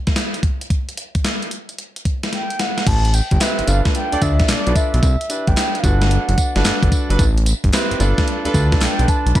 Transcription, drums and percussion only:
0.07 kick, snare, closed hi-hat
0.16 snare, clap, closed hi-hat
0.34 closed hi-hat
0.43 kick, closed hi-hat
0.61 closed hi-hat
0.70 kick, closed hi-hat
0.89 closed hi-hat
0.97 closed hi-hat
1.15 kick, closed hi-hat
1.24 snare, clap, closed hi-hat
1.42 closed hi-hat
1.51 closed hi-hat
1.69 closed hi-hat
1.78 closed hi-hat
1.96 closed hi-hat
2.05 kick, closed hi-hat
2.23 snare, closed hi-hat
2.33 snare, closed hi-hat
2.50 closed hi-hat
2.59 snare, closed hi-hat
2.78 snare, closed hi-hat
2.87 kick, closed hi-hat, crash, tambourine
3.05 closed hi-hat
3.14 closed hi-hat, tambourine
3.31 kick, closed hi-hat
3.41 snare, clap, closed hi-hat, tambourine
3.59 closed hi-hat
3.67 closed hi-hat, tambourine
3.85 kick, snare, closed hi-hat
3.95 closed hi-hat
4.12 closed hi-hat
4.22 kick, closed hi-hat, tambourine
4.39 kick, snare, closed hi-hat
4.49 snare, clap, closed hi-hat, tambourine
4.67 closed hi-hat
4.75 kick, closed hi-hat, tambourine
4.94 closed hi-hat
5.03 kick, closed hi-hat, tambourine
5.21 closed hi-hat
5.30 closed hi-hat, tambourine
5.47 kick, closed hi-hat
5.57 snare, clap, closed hi-hat, tambourine
5.75 closed hi-hat
5.84 kick, closed hi-hat, tambourine
6.01 snare, closed hi-hat
6.11 closed hi-hat
6.29 closed hi-hat
6.38 kick, closed hi-hat, tambourine
6.56 snare, closed hi-hat
6.65 snare, clap, closed hi-hat, tambourine
6.83 kick, closed hi-hat
6.92 kick, closed hi-hat, tambourine
7.10 closed hi-hat
7.19 kick, closed hi-hat, tambourine
7.38 closed hi-hat
7.46 closed hi-hat, tambourine
7.64 kick, closed hi-hat
7.73 snare, clap, closed hi-hat, tambourine
7.75 clap
7.91 closed hi-hat
8.00 closed hi-hat, tambourine
8.18 kick, snare, closed hi-hat
8.28 closed hi-hat
8.45 closed hi-hat
8.54 kick, closed hi-hat, tambourine
8.72 kick, snare, closed hi-hat
8.81 snare, clap, closed hi-hat, tambourine
8.99 closed hi-hat
9.08 kick, closed hi-hat, tambourine
9.27 closed hi-hat
9.35 kick, closed hi-hat, tambourine

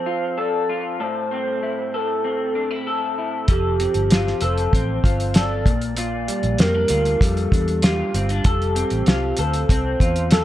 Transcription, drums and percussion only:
3.48 kick, closed hi-hat
3.80 closed hi-hat
3.94 closed hi-hat
4.10 snare, closed hi-hat
4.27 snare
4.41 closed hi-hat
4.58 closed hi-hat
4.73 kick, closed hi-hat
5.04 kick, closed hi-hat
5.20 closed hi-hat
5.34 snare, closed hi-hat
5.66 kick, closed hi-hat
5.82 closed hi-hat
5.97 closed hi-hat
6.28 closed hi-hat
6.43 closed hi-hat
6.58 snare, closed hi-hat
6.88 closed hi-hat
7.05 closed hi-hat
7.21 kick, closed hi-hat
7.37 closed hi-hat
7.52 kick, closed hi-hat
7.68 closed hi-hat
7.82 snare, closed hi-hat
8.14 closed hi-hat
8.29 closed hi-hat
8.44 kick, closed hi-hat
8.62 closed hi-hat
8.76 closed hi-hat
8.90 closed hi-hat
9.06 snare, closed hi-hat
9.37 closed hi-hat
9.53 closed hi-hat
9.69 kick, closed hi-hat
10.00 kick, closed hi-hat
10.16 closed hi-hat
10.31 snare, closed hi-hat

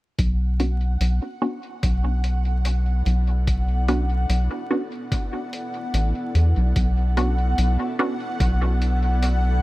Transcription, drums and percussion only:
0.19 kick, closed hi-hat
0.60 closed hi-hat
1.01 closed hi-hat
1.83 kick, closed hi-hat
2.24 closed hi-hat
2.65 closed hi-hat
3.06 closed hi-hat
3.47 kick, closed hi-hat
3.88 closed hi-hat
4.30 closed hi-hat
5.12 kick, closed hi-hat
5.53 closed hi-hat
5.94 closed hi-hat
6.35 closed hi-hat
6.76 kick, closed hi-hat
7.17 closed hi-hat
7.58 closed hi-hat
8.40 kick, closed hi-hat
8.82 closed hi-hat
9.23 closed hi-hat

